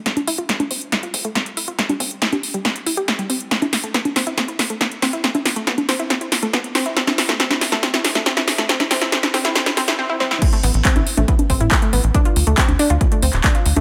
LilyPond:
<<
  \new Staff \with { instrumentName = "Synth arpeggio sound" } { \time 4/4 \key a \minor \tempo 4 = 139 c'16 r16 e'16 f'16 r16 a16 c'16 r16 e'16 f'16 r16 a16 c'16 r16 e'16 f'16 | r16 g16 c'16 r16 e'16 g'16 r16 g16 c'16 r16 e'16 g'16 r16 g16 c'16 r16 | c'16 e'16 r16 a16 b16 r16 c'16 e'16 c'16 e'16 r16 a16 b16 r16 c'16 e'16 | c'16 e'16 r16 a16 b16 r16 c'16 e'16 c'16 e'16 r16 a16 b16 r16 c'16 e'16 |
c'16 e'16 r16 a16 c'16 e'16 r16 a16 c'16 e'16 r16 a16 c'16 e'16 r16 a16 | c'16 e'16 c'16 e'16 c'16 e'16 c'16 e'16 c'16 e'16 c'16 e'16 c'16 e'16 c'16 e'16 | r16 a16 b16 r16 c'16 e'16 r16 a16 b16 r16 c'16 e'16 r16 a16 b16 r16 | d'16 f'16 r16 a16 c'16 r16 d'16 f'16 r16 a16 c'16 r16 d'16 f'16 r16 a16 | }
  \new Staff \with { instrumentName = "Analog synth bass" } { \clef bass \time 4/4 \key a \minor r1 | r1 | r1 | r1 |
r1 | r1 | r8 a,,16 a,,16 r16 a,,16 r16 a,,16 r8 a,,16 a,16 r8 a,,16 a,,16 | r8 d,16 d,16 r16 d,16 r16 d,16 r8 d,16 d,,16 r8 d,16 d,16 | }
  \new DrumStaff \with { instrumentName = "Drums" } \drummode { \time 4/4 <hh bd sn>16 <cgho hh>16 hho16 hh16 <hh bd sn>16 <cgho hh>16 hho16 hh16 <hh bd sn>16 hh16 <hho bd>16 hh16 <hh bd sn>16 hh16 hho16 hh16 | <hh bd sn>16 <cgho hh>16 <hho bd>16 hh16 <hh bd sn>16 <cgho hh>16 hho16 hh16 <hh bd sn>16 hh16 hho16 hh16 <hh bd sn>16 hh16 hho16 hh16 | <hh bd sn>16 <cgho hh>16 <hho sn>16 hh16 <hh bd sn>16 <cgho hh>16 <hho sn>16 hh16 <hh bd sn>16 hh16 <hho bd sn>16 hh16 <hh bd sn>16 hh16 <hho sn>16 hh16 | <hh bd sn>16 <cgho hh>16 <hho sn>16 hh16 <hh bd sn>16 <cgho hh>16 <hho sn>16 hh16 <hh bd sn>16 hh16 <hho sn>16 hh16 <hh bd sn>16 hh16 <hho sn>16 hh16 |
<hh bd sn>16 <cgho hh sn>16 <hho sn>16 <hh sn>16 <hh bd sn>16 <cgho hh sn>16 <hho sn>16 <hh sn>16 <hh bd sn>16 <hh sn>16 <hho bd sn>16 <hh sn>16 <hh bd sn>16 <hh sn>16 <hho sn>16 <hh sn>16 | <hh bd sn>16 <cgho hh sn>16 <hho bd sn>16 <hh sn>16 <hh bd sn>16 <cgho hh sn>16 <hho sn>16 <hh sn>16 <hh bd sn>16 <cgho hh sn>16 <hho sn>16 <hh sn>16 r8 sn16 sn16 | <cymc hh bd>16 hh16 hho16 hh16 <hc hh bd>16 <cgho hh>16 hho16 <cgho hh>16 <hh bd>16 <cgho hh>16 <hho bd>16 hh16 <hc hh bd>16 hh16 hho16 hh16 | <hh bd>16 hh16 hho16 hh16 <hc hh bd>16 <cgho hh>16 hho16 hh16 <hh bd>16 hh16 hho16 <hc hh>16 <hc hh bd>16 hh16 hho16 <cgho hh>16 | }
>>